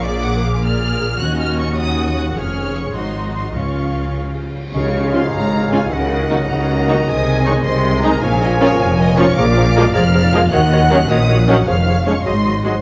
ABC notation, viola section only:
X:1
M:6/8
L:1/16
Q:3/8=104
K:Db
V:1 name="Viola section"
[B,A]6 [B,A]6 | [DG]6 [DG]6 | [DA]6 [EG]6 | [DF]8- [DF]2 z2 |
z4 [DF] z4 z [DF] z | z4 [EG] z4 z [EG] z | z4 [EA] z4 z [EA] z | z4 [DF] z4 z [DF] z |
z4 [A,F] z4 z [A,F] z | z4 [G,D] z4 z [G,D] z | z4 [A,D] z4 z [A,G] z |]